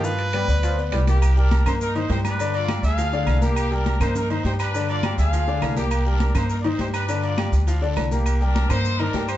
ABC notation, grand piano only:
X:1
M:4/4
L:1/8
Q:1/4=204
K:Cm
V:1 name="Grand piano"
[F,Ff]2 [=B,=Bd] [B,Bd]2 [B,Bd]2 [G,G_B] | z [G,Gg]2 [B,Bb]2 [E,Ee] [G,Gg]2 | [D,Dd]2 [G,Gg]2 [F,Ff] [D,Dd]2 [B,Bb]- | [B,Bb] [G,Gg]2 [B,Bb]2 [E,Ee] [G,Gg]2 |
[D,Dd]2 [G,Gg]2 [F,Ff] [D,Dd]2 [B,Bb]- | [B,Bb] [G,Gg]2 [B,Bb]2 [E,Ee] [G,Gg]2 | [D,Dd]2 [G,Gg]2 [F,Ff] [D,Dd]2 [B,Bb]- | [B,Bb] [G,Gg]2 [B,Bb]2 [E,Ee] [G,Gg]2 |]